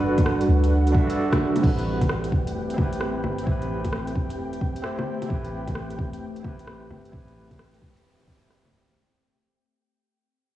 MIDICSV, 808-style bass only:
0, 0, Header, 1, 2, 480
1, 0, Start_track
1, 0, Tempo, 458015
1, 1709, Time_signature, 4, 2, 24, 8
1, 11056, End_track
2, 0, Start_track
2, 0, Title_t, "808-style bass"
2, 0, Program_c, 0, 38
2, 0, Note_on_c, 0, 31, 104
2, 500, Note_off_c, 0, 31, 0
2, 507, Note_on_c, 0, 38, 102
2, 977, Note_off_c, 0, 38, 0
2, 1712, Note_on_c, 0, 33, 95
2, 2420, Note_off_c, 0, 33, 0
2, 2433, Note_on_c, 0, 28, 97
2, 2912, Note_on_c, 0, 33, 86
2, 2927, Note_off_c, 0, 28, 0
2, 3380, Note_off_c, 0, 33, 0
2, 3395, Note_on_c, 0, 31, 89
2, 3618, Note_off_c, 0, 31, 0
2, 3633, Note_on_c, 0, 33, 97
2, 4341, Note_off_c, 0, 33, 0
2, 4356, Note_on_c, 0, 28, 97
2, 4822, Note_off_c, 0, 28, 0
2, 5555, Note_on_c, 0, 33, 92
2, 6261, Note_off_c, 0, 33, 0
2, 6274, Note_on_c, 0, 28, 98
2, 6753, Note_on_c, 0, 33, 93
2, 6769, Note_off_c, 0, 28, 0
2, 7220, Note_off_c, 0, 33, 0
2, 7232, Note_on_c, 0, 31, 86
2, 7457, Note_off_c, 0, 31, 0
2, 7473, Note_on_c, 0, 33, 93
2, 8180, Note_off_c, 0, 33, 0
2, 8195, Note_on_c, 0, 28, 92
2, 8661, Note_off_c, 0, 28, 0
2, 9152, Note_on_c, 0, 31, 87
2, 9309, Note_on_c, 0, 36, 81
2, 9325, Note_off_c, 0, 31, 0
2, 9385, Note_off_c, 0, 36, 0
2, 11056, End_track
0, 0, End_of_file